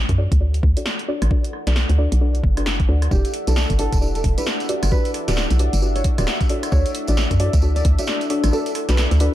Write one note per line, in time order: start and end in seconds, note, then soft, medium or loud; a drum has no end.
0.00 0.16 D4 medium
0.00 9.34 E4 medium
0.00 0.16 F#4 medium
0.00 0.16 A4 medium
0.00 9.34 A4 medium
0.00 0.16 C#5 medium
0.00 0.16 D5 medium
0.00 9.34 D5 medium
0.00 9.34 F#5 medium
0.09 0.27 F#2 medium
0.09 kick medium
0.09 closed hi-hat medium
0.18 0.31 D4 medium
0.18 0.31 F#4 medium
0.18 0.31 A4 medium
0.18 0.31 C#5 medium
0.18 0.31 D5 loud
0.32 0.61 D2 medium
0.32 kick loud
0.32 closed hi-hat medium
0.41 0.58 D4 medium
0.41 0.58 F#4 medium
0.41 0.58 A4 medium
0.41 0.58 C#5 medium
0.41 0.58 D5 medium
0.54 closed hi-hat soft
0.63 0.75 D2 loud
0.63 kick loud
0.77 1.06 D4 medium
0.77 1.06 F#4 medium
0.77 1.06 A4 medium
0.77 1.06 C#5 medium
0.77 1.06 D5 medium
0.77 closed hi-hat medium
0.86 snare loud
0.99 closed hi-hat soft
1.08 1.26 D4 medium
1.08 1.26 F#4 medium
1.08 1.26 A4 medium
1.08 1.26 C#5 medium
1.08 1.26 D5 loud
1.22 1.29 A1 medium
1.22 cross-stick medium
1.22 closed hi-hat medium
1.31 1.64 D4 medium
1.31 1.64 F#4 medium
1.31 1.64 A4 medium
1.31 1.64 B4 medium
1.31 1.64 D5 medium
1.31 kick loud
1.44 closed hi-hat soft
1.53 cross-stick soft
1.67 1.85 B1 medium
1.67 1.96 D4 medium
1.67 1.96 F#4 medium
1.67 1.96 A4 medium
1.67 1.96 B4 medium
1.67 1.96 D5 medium
1.67 snare medium
1.67 closed hi-hat medium
1.76 snare loud
1.89 2.08 D2 medium
1.89 closed hi-hat soft
1.98 2.11 D4 medium
1.98 2.11 F#4 medium
1.98 2.11 A4 medium
1.98 2.11 B4 medium
1.98 2.11 D5 loud
2.12 2.41 B1 medium
2.12 closed hi-hat medium
2.21 2.39 D4 medium
2.21 2.39 F#4 medium
2.21 2.39 A4 medium
2.21 2.39 B4 medium
2.21 2.39 D5 medium
2.35 closed hi-hat soft
2.44 2.86 F#1 medium
2.44 kick loud
2.57 2.87 D4 medium
2.57 2.87 F#4 medium
2.57 2.87 A4 medium
2.57 2.87 B4 medium
2.57 2.87 D5 medium
2.57 cross-stick medium
2.57 closed hi-hat medium
2.66 snare loud
2.80 kick loud
2.80 closed hi-hat soft
2.89 3.08 D2 medium
2.89 3.06 D4 medium
2.89 3.06 F#4 medium
2.89 3.06 A4 medium
2.89 3.06 B4 medium
2.89 3.06 D5 loud
3.02 cross-stick medium
3.02 closed hi-hat medium
3.11 3.23 E1 loud
3.11 9.34 D4 medium
3.11 3.44 D4 medium
3.11 3.44 E4 medium
3.11 3.44 G4 medium
3.11 3.30 G4 medium
3.11 3.44 B4 medium
3.11 3.44 D5 medium
3.11 9.34 E5 medium
3.11 kick loud
3.11 tambourine medium
3.25 closed hi-hat soft
3.25 tambourine soft
3.34 open hi-hat loud
3.47 3.66 B1 medium
3.47 3.77 D4 medium
3.47 3.77 E4 medium
3.47 3.77 G4 medium
3.47 3.64 A4 medium
3.47 3.77 B4 medium
3.47 3.77 D5 medium
3.47 closed hi-hat medium
3.47 tambourine medium
3.56 snare loud
3.56 tambourine medium
3.70 3.88 G1 medium
3.70 kick medium
3.70 closed hi-hat medium
3.70 tambourine soft
3.79 3.91 D4 medium
3.79 3.91 E4 medium
3.79 3.91 G4 medium
3.79 3.97 A4 medium
3.79 3.91 B4 medium
3.79 3.91 D5 loud
3.79 open hi-hat loud
3.92 4.22 E1 medium
3.92 kick loud
3.92 closed hi-hat medium
3.92 tambourine medium
4.01 4.19 D4 medium
4.01 4.19 E4 medium
4.01 4.19 G4 medium
4.01 4.19 B4 medium
4.01 4.19 D5 medium
4.01 tambourine medium
4.15 4.24 A4 medium
4.15 closed hi-hat soft
4.15 tambourine soft
4.24 4.36 E1 loud
4.24 kick loud
4.24 open hi-hat loud
4.38 4.67 D4 medium
4.38 4.67 E4 medium
4.38 4.67 G4 medium
4.38 4.67 B4 medium
4.38 4.47 B4 medium
4.38 4.67 D5 medium
4.38 closed hi-hat medium
4.38 tambourine medium
4.47 snare loud
4.47 tambourine medium
4.60 closed hi-hat soft
4.60 tambourine soft
4.69 4.87 D4 medium
4.69 4.87 F#4 medium
4.69 4.87 G4 medium
4.69 4.87 B4 medium
4.69 4.87 D5 loud
4.69 open hi-hat loud
4.83 4.90 G1 medium
4.83 cross-stick medium
4.83 closed hi-hat medium
4.83 tambourine medium
4.92 5.25 D4 medium
4.92 5.25 F#4 medium
4.92 5.25 G4 medium
4.92 5.25 B4 medium
4.92 5.10 B4 medium
4.92 5.25 D5 medium
4.92 kick loud
4.92 tambourine medium
5.05 open hi-hat medium
5.05 tambourine soft
5.14 cross-stick soft
5.14 open hi-hat loud
5.28 5.46 D1 medium
5.28 5.57 D4 medium
5.28 5.57 F#4 medium
5.28 5.57 G4 medium
5.28 5.57 B4 medium
5.28 5.57 D5 medium
5.28 5.44 D5 medium
5.28 snare medium
5.28 closed hi-hat medium
5.28 tambourine medium
5.37 snare loud
5.37 tambourine medium
5.50 5.69 B1 medium
5.50 closed hi-hat medium
5.50 tambourine soft
5.59 5.72 D4 medium
5.59 5.72 F#4 medium
5.59 5.72 G4 medium
5.59 5.72 B4 medium
5.59 5.78 D5 medium
5.59 5.72 D5 loud
5.59 open hi-hat loud
5.73 6.02 G1 medium
5.73 closed hi-hat medium
5.73 tambourine medium
5.82 6.00 D4 medium
5.82 6.00 F#4 medium
5.82 6.00 G4 medium
5.82 6.00 B4 medium
5.82 6.00 D5 medium
5.82 tambourine medium
5.96 6.05 C#5 medium
5.96 open hi-hat medium
5.96 tambourine soft
6.04 kick loud
6.04 open hi-hat loud
6.18 6.26 D1 loud
6.18 6.48 D4 medium
6.18 6.48 F#4 medium
6.18 6.48 G4 medium
6.18 6.48 B4 medium
6.18 6.27 D5 medium
6.18 6.48 D5 loud
6.18 cross-stick medium
6.18 closed hi-hat medium
6.18 tambourine medium
6.27 snare loud
6.27 tambourine medium
6.41 kick loud
6.41 closed hi-hat soft
6.41 tambourine soft
6.49 6.67 D4 loud
6.49 6.67 F#4 medium
6.49 6.67 A4 medium
6.49 6.67 C#5 medium
6.49 6.67 D5 loud
6.49 open hi-hat loud
6.63 cross-stick medium
6.63 closed hi-hat medium
6.63 tambourine medium
6.72 6.84 D2 loud
6.72 7.05 D4 medium
6.72 7.05 F#4 medium
6.72 7.05 A4 medium
6.72 6.90 C#5 medium
6.72 7.05 C#5 medium
6.72 7.05 D5 medium
6.72 kick loud
6.72 tambourine medium
6.86 closed hi-hat medium
6.86 tambourine soft
6.95 open hi-hat loud
7.07 7.27 A1 medium
7.07 7.38 D4 medium
7.07 7.38 F#4 medium
7.07 7.38 A4 medium
7.07 7.38 C#5 medium
7.07 7.24 D5 medium
7.07 7.38 D5 loud
7.07 closed hi-hat medium
7.07 tambourine medium
7.17 snare loud
7.17 tambourine medium
7.31 7.49 F#2 medium
7.31 kick medium
7.31 closed hi-hat medium
7.31 tambourine soft
7.40 7.52 D4 medium
7.40 7.52 F#4 medium
7.40 7.52 A4 medium
7.40 7.52 C#5 medium
7.40 7.52 D5 loud
7.40 7.58 D5 medium
7.40 open hi-hat loud
7.53 7.83 D2 medium
7.53 kick loud
7.53 closed hi-hat medium
7.53 tambourine medium
7.62 7.80 D4 medium
7.62 7.80 F#4 medium
7.62 7.80 A4 medium
7.62 7.80 C#5 medium
7.62 7.80 D5 medium
7.62 tambourine medium
7.76 7.85 D5 medium
7.76 closed hi-hat soft
7.76 tambourine soft
7.85 7.96 D2 loud
7.85 kick loud
7.85 open hi-hat loud
7.99 8.28 D4 medium
7.99 8.28 F#4 medium
7.99 8.28 A4 medium
7.99 8.28 C#5 medium
7.99 8.28 D5 loud
7.99 8.08 E5 medium
7.99 closed hi-hat medium
7.99 tambourine medium
8.07 snare loud
8.07 tambourine medium
8.21 closed hi-hat soft
8.21 tambourine soft
8.30 8.48 D4 loud
8.30 8.48 F#4 medium
8.30 8.48 A4 medium
8.30 8.48 C#5 medium
8.30 8.48 D5 loud
8.30 open hi-hat loud
8.44 8.51 A1 loud
8.44 cross-stick medium
8.44 closed hi-hat medium
8.44 tambourine medium
8.53 8.86 D4 medium
8.53 8.86 F#4 medium
8.53 8.86 A4 medium
8.53 8.71 A4 medium
8.53 8.86 B4 medium
8.53 8.86 D5 medium
8.53 tambourine medium
8.66 open hi-hat medium
8.66 tambourine soft
8.75 cross-stick soft
8.75 open hi-hat loud
8.89 9.07 B1 medium
8.89 9.18 D4 medium
8.89 9.18 F#4 medium
8.89 9.18 A4 medium
8.89 9.18 B4 medium
8.89 9.05 B4 medium
8.89 9.18 D5 medium
8.89 snare medium
8.89 closed hi-hat medium
8.89 tambourine medium
8.97 snare loud
8.97 tambourine medium
9.11 9.29 D2 medium
9.11 closed hi-hat medium
9.11 tambourine soft
9.20 9.33 D4 medium
9.20 9.33 F#4 medium
9.20 9.33 A4 medium
9.20 9.33 B4 medium
9.20 9.34 B4 medium
9.20 9.33 D5 loud
9.20 open hi-hat loud